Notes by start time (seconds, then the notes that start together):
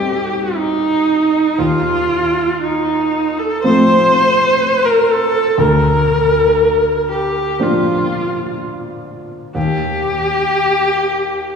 Already playing: D#2 G3 C4 D#4 G4
0.56 D#4
1.58 D#2 F4
2.62 D#4
3.39 A4
3.63 F3 A3 C4 C5
4.85 A#4
5.11 A4
5.58 D2 A#4
7.11 G4
7.59 F3 A#3 D4 F4
9.55 D#2 G4